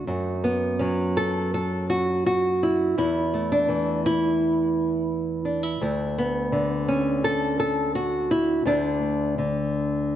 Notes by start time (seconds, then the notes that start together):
Already playing: A3
0.07 F#2 F#4
0.44 B3
0.79 F#3 C#4
1.17 A4
1.54 A4
1.90 F#4
2.26 F#4
2.63 E4
2.98 E2 E4
3.34 A3
3.52 D4
3.68 E3
4.06 E4
5.45 D4
5.63 E4
5.81 D2 A3
6.18 B3
6.52 D3
6.88 C#4
7.24 A4
7.60 A4
7.95 F#4
8.31 E4
8.65 D2 D3 A3 D4
9.02 A3
9.38 D3